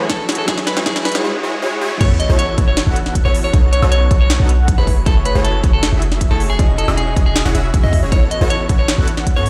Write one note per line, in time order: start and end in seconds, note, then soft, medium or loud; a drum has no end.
0.00 1.22 E3 medium
0.00 0.45 F#3 medium
0.00 0.46 A3 medium
0.00 0.26 A3 medium
0.00 0.46 E4 medium
0.00 0.26 E4 medium
0.00 1.22 F#4 medium
0.00 0.26 F#4 medium
0.00 0.47 G#4 medium
0.00 0.26 G#4 medium
0.00 0.47 A4 medium
0.00 0.26 C#5 medium
0.00 1.22 G#5 medium
0.00 riser medium
0.09 0.26 A4 medium
0.09 kick medium
0.09 snare medium
0.09 closed hi-hat medium
0.29 0.46 A3 medium
0.29 0.46 E4 medium
0.29 0.46 F#4 medium
0.29 0.46 G#4 medium
0.29 0.46 C#5 medium
0.29 snare medium
0.29 closed hi-hat soft
0.32 closed hi-hat medium
0.35 0.46 A4 medium
0.35 closed hi-hat medium
0.46 0.83 F#3 medium
0.46 0.74 G#3 medium
0.46 1.23 C#4 medium
0.46 0.84 E4 medium
0.46 0.74 E4 medium
0.46 0.74 F#4 medium
0.46 0.59 G#4 loud
0.46 0.74 G#4 medium
0.46 0.85 G#4 medium
0.46 0.74 C#5 loud
0.46 1.23 D#5 medium
0.46 kick loud
0.46 snare medium
0.46 closed hi-hat medium
0.58 snare medium
0.67 0.78 B4 medium
0.67 snare medium
0.67 closed hi-hat medium
0.77 0.85 G#3 medium
0.77 0.85 E4 medium
0.77 0.85 F#4 medium
0.77 0.85 G#4 medium
0.77 0.85 C#5 loud
0.77 snare medium
0.84 1.22 F#3 medium
0.84 1.13 G#3 medium
0.84 1.22 E4 medium
0.84 1.13 E4 medium
0.84 1.13 F#4 medium
0.84 0.97 G#4 medium
0.84 1.13 G#4 medium
0.84 1.23 G#4 medium
0.84 1.13 C#5 loud
0.84 kick loud
0.84 snare loud
0.84 closed hi-hat medium
0.96 snare medium
1.05 1.16 B4 medium
1.05 snare loud
1.05 closed hi-hat soft
1.08 closed hi-hat medium
1.12 1.23 G#3 medium
1.12 1.23 E4 medium
1.12 1.23 F#4 medium
1.12 1.23 G#4 medium
1.12 1.23 C#5 loud
1.12 snare medium
1.12 closed hi-hat medium
1.24 1.42 G#3 loud
1.24 1.42 E4 medium
1.24 1.42 F#4 medium
1.24 1.42 G#4 medium
1.24 1.42 C#5 loud
1.43 1.61 G#3 loud
1.43 1.61 E4 medium
1.43 1.61 F#4 medium
1.43 1.61 G#4 medium
1.43 1.61 C#5 loud
1.62 1.80 G#3 loud
1.62 1.80 E4 medium
1.62 1.80 F#4 medium
1.62 1.80 G#4 medium
1.62 1.80 C#5 loud
1.81 1.99 G#3 loud
1.81 1.99 E4 medium
1.81 1.99 F#4 medium
1.81 1.99 G#4 medium
1.81 1.99 C#5 loud
2.01 2.28 A1 loud
2.01 2.27 B3 loud
2.01 2.27 E4 medium
2.01 2.27 F#4 medium
2.01 2.27 A4 medium
2.01 2.12 C#5 loud
2.01 2.27 C#5 loud
2.01 kick loud
2.01 closed hi-hat medium
2.01 crash loud
2.01 sub drop medium
2.20 2.31 D#5 medium
2.20 closed hi-hat medium
2.29 2.56 A1 loud
2.29 2.56 B3 medium
2.29 2.56 E4 medium
2.29 2.56 F#4 medium
2.29 2.56 A4 medium
2.29 2.56 C#5 loud
2.39 2.55 C#5 medium
2.39 closed hi-hat medium
2.58 2.85 A1 medium
2.58 2.85 B3 medium
2.58 2.85 E4 medium
2.58 2.85 F#4 medium
2.58 2.85 A4 medium
2.58 2.85 C#5 medium
2.58 kick loud
2.58 closed hi-hat medium
2.68 2.84 C#5 medium
2.77 snare loud
2.77 closed hi-hat medium
2.87 3.23 A1 medium
2.87 3.23 B3 medium
2.87 3.23 E4 medium
2.87 3.23 F#4 medium
2.87 3.23 A4 medium
2.87 3.23 F#5 medium
2.96 closed hi-hat medium
3.06 snare soft
3.15 kick medium
3.15 closed hi-hat medium
3.25 3.52 A1 medium
3.25 3.51 B3 medium
3.25 3.51 E4 medium
3.25 3.51 F#4 medium
3.25 3.51 A4 medium
3.25 3.36 C#5 medium
3.25 3.51 C#5 medium
3.35 open hi-hat medium
3.44 3.60 C#5 loud
3.53 3.80 B1 medium
3.53 3.80 B3 medium
3.53 3.80 D#4 medium
3.53 3.80 F#4 medium
3.53 3.80 A4 medium
3.53 3.80 C#5 loud
3.53 kick loud
3.53 closed hi-hat medium
3.73 3.84 C#5 medium
3.73 closed hi-hat medium
3.82 4.09 B1 medium
3.82 4.09 B3 medium
3.82 4.09 D#4 medium
3.82 4.09 F#4 medium
3.82 4.09 A4 medium
3.82 4.09 C#5 loud
3.82 4.09 C#5 medium
3.82 high woodblock medium
3.92 4.08 C#5 medium
3.92 closed hi-hat medium
4.11 4.38 B1 medium
4.11 4.37 B3 medium
4.11 4.37 D#4 medium
4.11 4.37 F#4 medium
4.11 4.37 A4 medium
4.11 4.37 C#5 medium
4.11 kick loud
4.11 closed hi-hat medium
4.21 4.37 C#5 medium
4.30 snare loud
4.30 closed hi-hat medium
4.40 4.76 B1 loud
4.40 4.76 B3 medium
4.40 4.76 D#4 medium
4.40 4.76 F#4 medium
4.40 4.76 A4 medium
4.40 4.76 F#5 medium
4.49 closed hi-hat medium
4.68 kick loud
4.68 closed hi-hat medium
4.78 5.05 F#1 loud
4.78 5.04 A3 medium
4.78 5.04 E4 medium
4.78 5.04 F#4 medium
4.78 5.04 G#4 medium
4.78 4.94 B4 medium
4.78 5.04 C#5 medium
4.87 kick medium
4.87 open hi-hat medium
5.06 5.33 F#1 medium
5.06 5.33 A3 loud
5.06 5.33 E4 medium
5.06 5.33 F#4 medium
5.06 5.33 G#4 medium
5.06 5.17 A4 loud
5.06 5.33 C#5 loud
5.06 kick loud
5.06 closed hi-hat medium
5.25 5.37 B4 medium
5.25 closed hi-hat medium
5.35 5.62 F#1 loud
5.35 5.61 A3 medium
5.35 5.61 E4 medium
5.35 5.61 F#4 medium
5.35 5.61 G#4 medium
5.35 5.61 C#5 loud
5.44 5.61 A4 medium
5.44 closed hi-hat medium
5.64 5.91 F#1 medium
5.64 5.90 A3 medium
5.64 5.90 E4 medium
5.64 5.90 F#4 medium
5.64 5.90 G#4 medium
5.64 5.90 C#5 medium
5.64 kick loud
5.64 closed hi-hat medium
5.73 5.90 A4 medium
5.83 snare loud
5.83 closed hi-hat medium
5.92 6.29 F#1 medium
5.92 6.28 A3 medium
5.92 6.28 E4 medium
5.92 6.28 F#4 medium
5.92 6.28 G#4 medium
5.92 6.28 E5 medium
6.02 closed hi-hat medium
6.12 snare soft
6.21 kick medium
6.21 closed hi-hat medium
6.31 6.57 F#1 medium
6.31 6.57 A3 medium
6.31 6.57 E4 medium
6.31 6.57 F#4 medium
6.31 6.57 G#4 medium
6.31 6.41 A4 medium
6.31 6.57 C#5 medium
6.40 open hi-hat medium
6.50 6.66 G#4 medium
6.59 6.86 E1 loud
6.59 6.86 C#4 loud
6.59 6.86 E4 medium
6.59 6.86 F#4 medium
6.59 6.86 G#4 medium
6.59 6.86 D#5 loud
6.59 kick loud
6.59 closed hi-hat medium
6.78 6.89 A4 medium
6.78 closed hi-hat medium
6.88 7.15 E1 medium
6.88 7.14 C#4 medium
6.88 7.14 E4 medium
6.88 7.14 F#4 medium
6.88 7.14 G#4 medium
6.88 7.14 D#5 loud
6.88 high woodblock medium
6.97 7.14 G#4 medium
6.97 closed hi-hat medium
7.16 7.43 E1 medium
7.16 7.43 C#4 medium
7.16 7.43 E4 medium
7.16 7.43 F#4 medium
7.16 7.43 G#4 medium
7.16 7.43 D#5 medium
7.16 kick loud
7.16 closed hi-hat medium
7.26 7.42 G#4 medium
7.36 snare loud
7.36 closed hi-hat medium
7.45 7.53 E1 loud
7.45 7.53 C#4 medium
7.45 7.53 E4 medium
7.45 7.53 F#4 medium
7.45 7.53 G#4 medium
7.45 7.53 F#5 medium
7.45 snare soft
7.55 7.72 E1 medium
7.55 7.72 C#4 medium
7.55 7.72 E4 medium
7.55 7.72 F#4 medium
7.55 7.72 G#4 medium
7.55 7.72 E5 medium
7.55 closed hi-hat medium
7.74 7.82 E1 loud
7.74 7.81 C#4 medium
7.74 7.81 E4 medium
7.74 7.81 F#4 medium
7.74 7.81 G#4 medium
7.74 7.81 E5 medium
7.74 kick loud
7.74 closed hi-hat medium
7.84 8.01 E2 medium
7.84 8.00 C#4 medium
7.84 8.00 E4 medium
7.84 8.00 F#4 medium
7.84 8.00 G#4 medium
7.84 8.00 D#5 medium
7.84 8.00 E5 medium
7.93 kick medium
7.93 open hi-hat medium
8.03 8.14 E1 loud
8.03 8.11 C#4 medium
8.03 8.11 E4 medium
8.03 8.11 F#4 medium
8.03 8.11 G#4 medium
8.03 8.11 C#5 medium
8.12 8.39 A1 medium
8.12 8.39 B3 medium
8.12 8.39 E4 medium
8.12 8.39 F#4 medium
8.12 8.39 A4 medium
8.12 8.23 C#5 loud
8.12 8.39 C#5 loud
8.12 kick loud
8.12 closed hi-hat medium
8.31 8.42 D#5 medium
8.31 closed hi-hat medium
8.41 8.68 A1 loud
8.41 8.67 B3 medium
8.41 8.67 E4 medium
8.41 8.67 F#4 medium
8.41 8.67 A4 medium
8.41 8.67 C#5 loud
8.50 8.66 C#5 medium
8.50 closed hi-hat medium
8.69 8.96 A1 medium
8.69 8.96 B3 medium
8.69 8.96 E4 medium
8.69 8.96 F#4 medium
8.69 8.96 A4 medium
8.69 8.96 C#5 medium
8.69 kick loud
8.69 closed hi-hat medium
8.79 8.95 C#5 medium
8.88 snare loud
8.88 closed hi-hat medium
8.98 9.38 A1 medium
8.98 9.34 B3 medium
8.98 9.34 E4 medium
8.98 9.34 F#4 medium
8.98 9.34 A4 medium
8.98 9.34 F#5 medium
9.08 closed hi-hat medium
9.17 snare soft
9.27 kick medium
9.27 closed hi-hat medium
9.36 9.50 A2 loud
9.36 9.50 B3 medium
9.36 9.50 E4 medium
9.36 9.50 F#4 medium
9.36 9.50 A4 medium
9.36 9.50 C#5 medium
9.36 9.47 C#5 medium
9.36 9.50 C#5 medium
9.46 open hi-hat medium